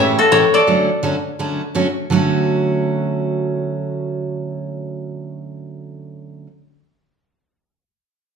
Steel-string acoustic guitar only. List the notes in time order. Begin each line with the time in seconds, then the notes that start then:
Already playing: A2 C#3 E3 A3 C#4 G4
0.31 A2 C#3 E3 A3 C#4 G4
0.67 D3 F#3 A3 C#4 F#4
1.03 D3 F#3 A3 C#4 F#4
1.39 D3 F#3 A3 C#4 F#4
1.75 D3 F#3 A3 C#4 F#4
2.10 D3 F#3 A3 C#4 F#4